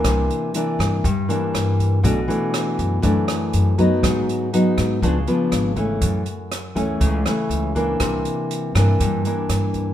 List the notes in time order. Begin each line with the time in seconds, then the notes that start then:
Already playing: E3 A#3 D4
0.04 C2 C3, kick, cross-stick, closed hi-hat
0.30 closed hi-hat
0.54 E3 A#3 D4, closed hi-hat
0.79 G2, kick, cross-stick, closed hi-hat
1.04 G2, kick, closed hi-hat
1.29 E3 A#3 D4, closed hi-hat
1.54 G2, cross-stick, closed hi-hat
1.79 kick, closed hi-hat
2.03 B1 B2 E3 A3 D4, kick, closed hi-hat
2.28 E3 A3 D4, closed hi-hat
2.54 cross-stick, closed hi-hat
2.79 F#2, kick, closed hi-hat
3.02 F#2 E3 A3 D4, kick, closed hi-hat
3.28 cross-stick, closed hi-hat
3.53 F#2, closed hi-hat
3.78 F#3 B3 D#4, kick, closed hi-hat
4.03 G#1 G#2, kick, cross-stick, closed hi-hat
4.29 closed hi-hat
4.53 F#3 B3 D#4, closed hi-hat
4.78 G#2, kick, cross-stick, closed hi-hat
5.02 C#2 C#3 F3 B3 D4, kick, closed hi-hat
5.27 F3 B3 D4, closed hi-hat
5.52 G#1, cross-stick, closed hi-hat
5.76 E3 A3 C#4, kick, closed hi-hat
6.01 F#2, kick, closed hi-hat
6.26 closed hi-hat
6.52 cross-stick, closed hi-hat
6.75 C#2 E3 A3 C#4, kick, closed hi-hat
7.00 C#2 C#3, kick, closed hi-hat
7.26 E3 A3 C#4, cross-stick, closed hi-hat
7.49 C#2, closed hi-hat
7.75 E3 A#3 D4, kick, closed hi-hat
8.00 C2 C3, kick, cross-stick, closed hi-hat
8.25 closed hi-hat
8.51 closed hi-hat
8.75 G2 E3 A#3 D4, kick, cross-stick, closed hi-hat
9.00 G2, kick, closed hi-hat
9.25 E3 A#3 D4, closed hi-hat
9.49 G2, cross-stick, closed hi-hat
9.74 kick, closed hi-hat